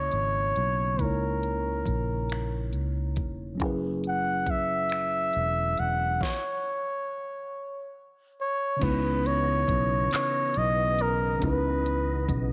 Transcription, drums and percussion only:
0.11 closed hi-hat soft
0.56 closed hi-hat medium
0.99 kick medium
0.99 closed hi-hat medium
1.43 closed hi-hat soft
1.86 kick medium
1.86 closed hi-hat medium
2.30 finger snap medium
2.30 closed hi-hat medium
2.73 closed hi-hat soft
3.16 kick medium
3.16 closed hi-hat soft
3.60 kick loud
3.60 closed hi-hat medium
4.04 closed hi-hat soft
4.46 kick medium
4.46 closed hi-hat medium
4.90 finger snap loud
4.90 closed hi-hat medium
5.33 closed hi-hat soft
5.77 closed hi-hat medium
6.21 kick loud
6.21 snare medium
8.82 kick loud
8.82 closed hi-hat medium
8.82 crash loud
9.26 closed hi-hat soft
9.68 kick medium
9.68 closed hi-hat medium
10.11 clap loud
10.11 closed hi-hat medium
10.54 closed hi-hat medium
10.99 closed hi-hat medium
11.42 kick loud
11.42 closed hi-hat medium
11.86 closed hi-hat soft
12.29 kick loud
12.29 closed hi-hat medium

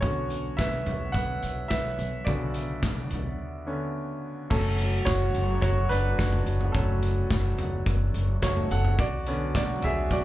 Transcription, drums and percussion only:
0.02 kick loud
0.02 closed hi-hat medium
0.30 closed hi-hat medium
0.59 kick loud
0.59 snare medium
0.59 clap medium
0.59 closed hi-hat medium
0.59 tambourine medium
0.86 closed hi-hat medium
0.86 floor tom medium
1.14 kick medium
1.14 closed hi-hat medium
1.43 closed hi-hat medium
1.70 kick medium
1.70 snare loud
1.70 clap medium
1.70 closed hi-hat medium
1.70 tambourine medium
1.99 closed hi-hat medium
2.27 kick loud
2.27 closed hi-hat medium
2.54 closed hi-hat medium
2.83 kick loud
2.83 snare medium
2.83 clap medium
2.83 closed hi-hat medium
2.83 tambourine medium
3.11 closed hi-hat medium
3.11 floor tom medium
4.51 kick loud
4.51 crash medium
4.78 closed hi-hat medium
5.07 kick loud
5.07 snare loud
5.07 clap medium
5.07 closed hi-hat loud
5.07 tambourine medium
5.34 closed hi-hat medium
5.62 kick loud
5.62 closed hi-hat medium
5.91 closed hi-hat medium
6.19 kick loud
6.19 snare loud
6.19 clap medium
6.19 closed hi-hat medium
6.19 tambourine medium
6.33 floor tom medium
6.47 closed hi-hat medium
6.61 floor tom medium
6.75 kick loud
6.75 closed hi-hat medium
7.03 closed hi-hat medium
7.31 kick loud
7.31 snare loud
7.31 clap medium
7.31 closed hi-hat loud
7.31 tambourine medium
7.58 closed hi-hat medium
7.58 floor tom medium
7.86 kick loud
7.86 closed hi-hat medium
8.14 closed hi-hat medium
8.42 kick loud
8.42 snare loud
8.42 clap medium
8.42 closed hi-hat medium
8.42 tambourine medium
8.57 floor tom medium
8.71 closed hi-hat medium
8.85 floor tom medium
8.99 kick loud
8.99 closed hi-hat medium
9.26 closed hi-hat medium
9.55 kick loud
9.55 snare loud
9.55 clap medium
9.55 closed hi-hat loud
9.55 tambourine medium
9.82 closed hi-hat medium
9.82 floor tom medium
10.11 kick loud
10.11 closed hi-hat medium

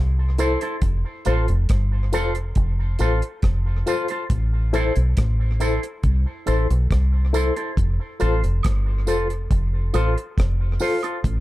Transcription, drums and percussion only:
0.38 closed hi-hat medium
0.38 tambourine medium
0.61 closed hi-hat medium
0.82 kick loud
0.82 closed hi-hat loud
1.25 closed hi-hat medium
1.25 tambourine soft
1.48 closed hi-hat soft
1.69 kick loud
1.69 cross-stick loud
1.69 closed hi-hat loud
2.13 closed hi-hat medium
2.13 tambourine medium
2.35 closed hi-hat soft
2.55 kick loud
2.55 closed hi-hat medium
2.99 closed hi-hat medium
2.99 tambourine medium
3.22 closed hi-hat soft
3.42 kick loud
3.42 cross-stick loud
3.42 closed hi-hat medium
3.87 closed hi-hat medium
3.87 tambourine medium
4.08 closed hi-hat medium
4.30 kick loud
4.30 closed hi-hat medium
4.74 closed hi-hat medium
4.74 tambourine soft
4.96 closed hi-hat medium
5.17 kick loud
5.17 cross-stick loud
5.17 closed hi-hat loud
5.60 closed hi-hat medium
5.60 tambourine medium
5.83 closed hi-hat medium
6.03 kick loud
6.03 closed hi-hat medium
6.47 closed hi-hat medium
6.47 tambourine soft
6.70 closed hi-hat medium
6.91 kick loud
6.91 cross-stick loud
6.91 closed hi-hat medium
7.34 closed hi-hat medium
7.34 tambourine medium
7.56 closed hi-hat medium
7.77 kick loud
7.77 closed hi-hat medium
8.20 closed hi-hat medium
8.20 tambourine soft
8.44 closed hi-hat soft
8.63 kick loud
8.63 cross-stick loud
8.63 closed hi-hat loud
8.63 high woodblock medium
9.07 closed hi-hat medium
9.07 tambourine medium
9.30 closed hi-hat soft
9.51 kick loud
9.51 closed hi-hat medium
9.94 closed hi-hat medium
9.94 tambourine medium
9.94 high woodblock medium
10.18 closed hi-hat soft
10.38 kick loud
10.38 cross-stick loud
10.38 closed hi-hat medium
10.79 open hi-hat medium
10.79 tambourine medium
11.03 closed hi-hat medium
11.03 high woodblock medium
11.24 kick loud
11.24 closed hi-hat medium

